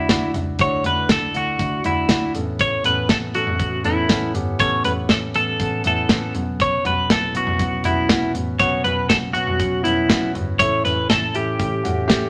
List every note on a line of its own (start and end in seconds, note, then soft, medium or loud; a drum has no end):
0.00 0.60 D3 medium
0.00 0.09 D4 medium
0.00 0.09 E4 medium
0.00 0.30 E4 medium
0.00 0.09 F#4 medium
0.09 0.30 D2 medium
0.09 0.32 D4 medium
0.09 0.32 E4 medium
0.09 0.32 F#4 loud
0.09 kick loud
0.09 snare loud
0.09 closed hi-hat loud
0.34 0.55 C#2 medium
0.34 0.57 D4 medium
0.34 0.57 E4 soft
0.34 0.57 F#4 medium
0.34 closed hi-hat medium
0.34 floor tom medium
0.59 0.80 D2 loud
0.59 1.31 D3 medium
0.59 0.82 D4 medium
0.59 0.83 E4 medium
0.59 0.83 F#4 medium
0.59 0.86 C#5 loud
0.59 kick loud
0.59 closed hi-hat medium
0.84 1.05 D2 medium
0.84 1.07 D4 medium
0.84 1.07 E4 medium
0.84 1.07 F#4 medium
0.84 1.11 B4 medium
0.84 closed hi-hat medium
0.84 floor tom medium
1.09 1.30 D2 medium
1.09 1.32 D4 medium
1.09 1.33 E4 medium
1.09 1.33 A4 medium
1.09 1.36 A4 medium
1.09 kick medium
1.09 snare loud
1.09 closed hi-hat medium
1.34 1.55 D2 medium
1.34 1.57 D4 medium
1.34 1.57 E4 medium
1.34 1.57 F#4 medium
1.34 1.85 F#4 medium
1.34 closed hi-hat medium
1.59 1.80 D2 medium
1.59 1.82 D4 medium
1.59 1.82 E4 soft
1.59 1.82 F#4 medium
1.59 kick medium
1.59 closed hi-hat medium
1.84 2.05 D2 medium
1.84 2.07 D4 medium
1.84 2.08 E4 medium
1.84 2.32 E4 medium
1.84 2.08 F#4 medium
1.84 closed hi-hat medium
1.84 floor tom medium
2.09 2.30 D2 medium
2.09 2.32 D4 medium
2.09 2.32 E4 medium
2.09 2.33 F#4 loud
2.09 kick loud
2.09 snare loud
2.09 closed hi-hat medium
2.34 2.76 A1 loud
2.34 3.06 A2 soft
2.34 2.80 B3 medium
2.34 2.80 C#4 medium
2.34 2.80 A4 medium
2.34 closed hi-hat medium
2.34 floor tom medium
2.59 2.85 C#5 loud
2.59 kick loud
2.59 closed hi-hat medium
2.84 3.05 A1 loud
2.84 3.08 B3 medium
2.84 3.08 C#4 medium
2.84 3.08 A4 medium
2.84 3.10 B4 medium
2.84 closed hi-hat medium
2.84 floor tom medium
3.09 3.30 A1 medium
3.09 3.33 B3 medium
3.09 3.33 C#4 medium
3.09 3.17 A4 medium
3.09 3.33 A4 medium
3.09 kick loud
3.09 snare loud
3.09 closed hi-hat medium
3.35 3.55 A1 medium
3.35 3.58 B3 medium
3.35 3.58 C#4 medium
3.35 3.85 F#4 medium
3.35 3.58 A4 medium
3.35 closed hi-hat medium
3.47 floor tom medium
3.59 3.80 A1 medium
3.59 3.82 B3 medium
3.59 3.82 C#4 medium
3.59 3.83 A4 medium
3.59 kick medium
3.59 closed hi-hat medium
3.84 4.05 A1 medium
3.84 4.07 B3 medium
3.84 4.07 C#4 medium
3.84 4.32 E4 medium
3.84 4.08 A4 loud
3.84 closed hi-hat medium
3.84 floor tom medium
4.09 4.30 A1 medium
4.09 4.33 B3 medium
4.09 4.33 C#4 medium
4.09 4.33 A4 medium
4.09 kick loud
4.09 snare medium
4.09 closed hi-hat medium
4.34 4.55 G1 medium
4.34 5.05 A2 soft
4.34 4.57 B3 medium
4.34 4.57 C#4 medium
4.34 4.57 G4 medium
4.34 closed hi-hat medium
4.34 floor tom medium
4.59 4.80 A1 medium
4.59 4.83 B3 medium
4.59 4.82 C#4 medium
4.59 4.83 A4 medium
4.59 4.85 C#5 loud
4.59 kick loud
4.59 closed hi-hat medium
4.84 5.05 A1 medium
4.84 5.07 B3 medium
4.84 5.07 C#4 medium
4.84 5.07 A4 medium
4.84 4.92 B4 medium
4.84 closed hi-hat medium
4.84 floor tom medium
5.09 5.30 A1 medium
5.09 5.33 B3 medium
5.09 5.33 C#4 medium
5.09 5.33 A4 medium
5.09 5.17 A4 medium
5.09 kick medium
5.09 snare loud
5.09 closed hi-hat medium
5.34 5.56 A1 medium
5.34 5.58 B3 medium
5.34 5.58 C#4 medium
5.34 5.58 A4 medium
5.34 5.82 A4 medium
5.34 closed hi-hat medium
5.60 5.80 A1 loud
5.60 5.83 B3 medium
5.60 5.83 C#4 medium
5.60 5.83 A4 medium
5.60 kick medium
5.60 closed hi-hat medium
5.84 6.05 A1 medium
5.84 6.08 B3 medium
5.84 6.08 C#4 medium
5.84 6.08 E4 medium
5.84 6.33 A4 medium
5.84 closed hi-hat medium
5.84 floor tom medium
6.09 6.30 A1 medium
6.09 6.33 B3 medium
6.09 6.33 C#4 medium
6.09 6.33 A4 loud
6.09 kick loud
6.09 snare loud
6.09 closed hi-hat medium
6.34 6.76 B1 medium
6.34 7.06 B2 soft
6.34 6.81 B3 medium
6.34 6.81 C#4 medium
6.34 6.81 F#4 medium
6.34 closed hi-hat medium
6.34 floor tom medium
6.60 6.86 C#5 medium
6.60 kick loud
6.60 closed hi-hat medium
6.84 7.05 B1 medium
6.84 7.07 B3 medium
6.84 7.08 C#4 medium
6.84 7.08 F#4 medium
6.84 7.09 B4 medium
6.84 closed hi-hat medium
6.84 floor tom medium
7.10 7.30 B1 medium
7.10 7.33 B3 medium
7.10 7.33 C#4 soft
7.10 7.33 E4 medium
7.10 7.34 A4 medium
7.10 kick loud
7.10 snare loud
7.10 closed hi-hat medium
7.35 7.55 B1 medium
7.35 7.58 B3 medium
7.35 7.58 C#4 medium
7.35 7.58 F#4 medium
7.35 7.85 F#4 medium
7.35 closed hi-hat medium
7.47 floor tom medium
7.59 7.80 B1 medium
7.59 7.82 B3 medium
7.59 7.83 C#4 medium
7.59 7.83 F#4 medium
7.59 kick medium
7.59 closed hi-hat medium
7.84 8.06 B1 medium
7.84 8.07 B3 medium
7.84 8.07 C#4 medium
7.84 8.32 E4 medium
7.84 8.08 F#4 loud
7.84 closed hi-hat medium
7.84 floor tom medium
8.09 8.30 B1 medium
8.09 8.32 B3 medium
8.09 8.32 C#4 medium
8.09 8.33 F#4 loud
8.09 kick loud
8.09 snare loud
8.09 closed hi-hat medium
8.34 8.56 A1 medium
8.34 9.06 B2 soft
8.34 8.57 B3 medium
8.34 8.57 C#4 soft
8.34 8.57 F#4 medium
8.34 closed hi-hat medium
8.34 floor tom medium
8.59 8.80 B1 loud
8.59 8.82 B3 medium
8.59 8.82 C#4 medium
8.59 8.83 F#4 medium
8.59 8.84 C#5 medium
8.59 kick loud
8.59 closed hi-hat medium
8.84 9.05 B1 medium
8.84 9.08 B3 medium
8.84 9.08 C#4 medium
8.84 9.08 F#4 medium
8.84 9.09 B4 medium
8.84 closed hi-hat medium
8.84 floor tom medium
9.09 9.30 B1 medium
9.09 9.32 B3 medium
9.09 9.33 C#4 medium
9.09 9.33 F#4 medium
9.09 9.16 A4 medium
9.09 kick loud
9.09 snare loud
9.09 closed hi-hat medium
9.34 9.55 B1 medium
9.34 9.57 B3 medium
9.34 9.58 C#4 medium
9.34 9.84 F#4 medium
9.34 9.58 F#4 medium
9.34 closed hi-hat medium
9.47 floor tom medium
9.59 9.80 B1 medium
9.59 9.82 B3 medium
9.59 9.82 C#4 medium
9.59 9.83 F#4 medium
9.59 kick medium
9.59 closed hi-hat medium
9.83 10.05 B1 medium
9.83 10.07 B3 medium
9.83 10.07 C#4 medium
9.83 10.31 E4 medium
9.83 10.07 E4 medium
9.83 closed hi-hat medium
9.83 floor tom medium
10.09 10.30 B1 medium
10.09 10.32 B3 medium
10.09 10.32 C#4 medium
10.09 10.32 F#4 loud
10.09 kick loud
10.09 snare loud
10.09 closed hi-hat medium
10.34 10.55 G1 medium
10.34 10.57 B3 medium
10.34 10.57 C#4 soft
10.34 10.57 F#4 medium
10.34 closed hi-hat medium
10.34 floor tom medium
10.59 10.80 A1 loud
10.59 11.31 A2 medium
10.59 10.82 A3 medium
10.59 10.82 C#4 medium
10.59 10.83 E4 medium
10.59 10.84 C#5 loud
10.59 kick loud
10.59 closed hi-hat medium
10.84 11.06 A1 medium
10.84 11.07 A3 medium
10.84 11.07 C#4 medium
10.84 11.07 E4 medium
10.84 11.09 B4 medium
10.84 closed hi-hat medium
10.84 floor tom medium
11.09 11.30 A1 medium
11.09 11.32 A3 medium
11.09 11.32 C#4 medium
11.09 11.33 E4 medium
11.09 11.36 A4 medium
11.09 kick loud
11.09 snare medium
11.09 closed hi-hat medium
11.34 11.56 A1 medium
11.34 11.57 A3 medium
11.34 11.57 C#4 medium
11.34 11.57 E4 medium
11.34 12.29 G4 medium
11.34 closed hi-hat medium
11.58 11.80 A1 loud
11.58 11.82 A3 medium
11.58 11.82 C#4 medium
11.58 11.82 G4 medium
11.58 kick medium
11.58 closed hi-hat medium
11.83 12.06 A1 medium
11.83 12.06 A3 medium
11.83 12.06 C#4 medium
11.83 12.07 F#4 medium
11.83 closed hi-hat medium
11.83 floor tom medium
12.08 12.29 A1 medium
12.08 12.29 A3 loud
12.08 12.29 C#4 loud
12.08 12.29 G4 loud
12.08 kick loud
12.08 snare loud
12.08 closed hi-hat loud